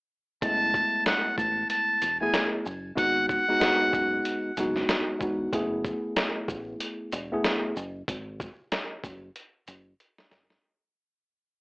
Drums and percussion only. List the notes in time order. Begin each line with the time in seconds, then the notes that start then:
0.42 kick, closed hi-hat
0.74 kick, shaker
1.06 snare, closed hi-hat
1.38 kick, shaker
1.70 closed hi-hat
2.02 closed hi-hat, shaker
2.34 snare, closed hi-hat
2.66 shaker
2.97 kick, closed hi-hat
3.29 kick, shaker
3.61 snare, closed hi-hat
3.93 kick, shaker
4.25 closed hi-hat
4.57 closed hi-hat, shaker
4.76 snare
4.89 snare, closed hi-hat
5.21 kick, shaker
5.53 kick, closed hi-hat
5.85 kick, shaker
6.16 snare, closed hi-hat
6.48 kick, shaker
6.80 closed hi-hat
7.12 closed hi-hat, shaker
7.44 snare, closed hi-hat
7.76 shaker
8.08 kick, closed hi-hat
8.40 kick, shaker
8.72 snare, closed hi-hat
9.04 kick, closed hi-hat, shaker
9.36 closed hi-hat
9.68 closed hi-hat, shaker
10.00 closed hi-hat
10.18 snare
10.31 snare, shaker
10.50 snare